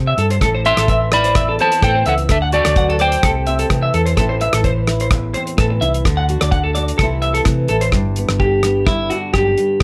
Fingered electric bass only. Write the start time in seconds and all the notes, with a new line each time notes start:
Already playing: C3
0.18 G2
0.41 A1
0.77 A1
1.82 A2
2.06 C#2
2.29 D2
2.66 D2
3.23 C2
3.70 C3
3.94 E2
4.17 A1
4.53 A1
5.58 A2
5.81 C2
6.05 D2
6.42 D2
6.99 C2
7.45 C3
7.69 A1
7.92 G1
8.29 G1
9.33 G1